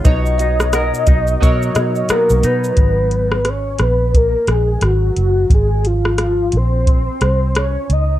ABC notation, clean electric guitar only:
X:1
M:4/4
L:1/8
Q:"Swing 16ths" 1/4=88
K:G#dor
V:1 name="Clean electric guitar"
B,, D A D F,2 B, D | z8 | z8 |]